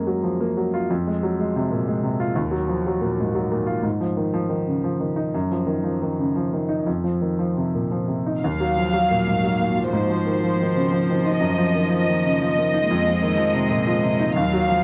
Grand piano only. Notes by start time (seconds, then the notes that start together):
Already playing: F#2 G#3 A#3
0.07 F#3
0.23 F3
0.41 A#3
0.57 F#3
0.74 F4
0.90 F2
1.07 G#3
1.23 F#3
1.40 G#3
1.56 C3
1.71 A#2
1.88 G#3
2.03 C3
2.20 F4
2.35 D#2
2.51 F#3
2.68 F3
2.87 F#3
3.01 A#2
3.20 G#2
3.35 F#3
3.51 A#2
3.66 F4
3.83 G#2
4.01 F3
4.17 D#3
4.34 F3
4.49 D#3
4.67 C#3
4.84 F3
5.00 D#3
5.16 D#4
5.34 F#2
5.51 F3
5.67 D#3
5.84 F3
6.02 D#3
6.19 C#3
6.36 F3
6.53 D#3
6.69 D#4
6.86 F2
7.04 F3
7.21 D#3
7.39 F3
7.57 C3
7.75 A#2
7.91 F3
8.08 C3
8.26 D#4
8.44 D#2
8.60 F#3
8.77 F3
8.94 F#3
9.10 A#2
9.27 G#2
9.44 F#3
9.61 A#2
9.77 F4
9.93 G#2
10.10 F3
10.26 D#3
10.44 F3
10.61 D#3
10.76 C#3
10.92 F3
11.10 D#3
11.26 D#4
11.40 F#2
11.58 F3
11.75 D#3
11.90 F3
12.08 D#3
12.26 C#3
12.42 F3
12.58 D#3
12.74 D#4
12.91 F2
13.07 F3
13.22 D#3
13.38 F3
13.54 C3
13.70 A#2
13.87 F3
14.03 C3
14.20 D#4
14.36 D#2
14.53 F#3
14.68 F3